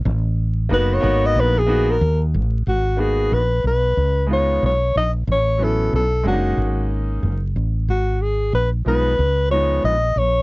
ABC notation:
X:1
M:4/4
L:1/16
Q:"Swing 16ths" 1/4=92
K:G#dor
V:1 name="Alto saxophone"
z4 B c2 d B G2 A2 z3 | F2 G2 B2 B4 c2 c2 d2 | c2 =A2 A2 F4 z6 | F2 G2 B2 B4 c2 d2 c2 |]
V:2 name="Grand piano"
z4 [A,B,DF]2 [A,B,DF]4 [A,B,DF]2 z4 | z2 [A,B,DF]2 z6 [G,B,DE]2 z4 | z2 [F,B,C=E]2 z2 [G,A,C=D^D]6 z4 | z6 [E,G,B,D]2 z2 [E,G,B,D]2 z4 |]
V:3 name="Fretless electric bass" clef=bass
=A,,,4 F,,,2 G,,,2 ^A,,,4 D,,2 =A,,,2 | G,,,4 A,,,2 B,,,2 C,,4 B,,,2 A,,,2 | =A,,,4 B,,,2 F,,,2 G,,,4 F,,,2 A,,,2 | G,,,4 A,,,2 B,,,2 C,,4 A,,,2 A,,,2 |]